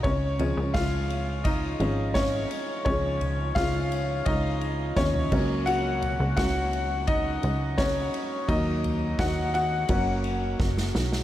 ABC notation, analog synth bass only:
X:1
M:4/4
L:1/16
Q:1/4=85
K:F#
V:1 name="Analog synth bass" clef=bass
C,,3 C,, C,,6 G,,,4 z2 | C,,4 C,,4 C,,4 D,,2 C,,2- | C,,3 C,, C,,6 C,,4 z2 | D,,4 D,,4 F,,,4 F,,,2 B,,,2 |]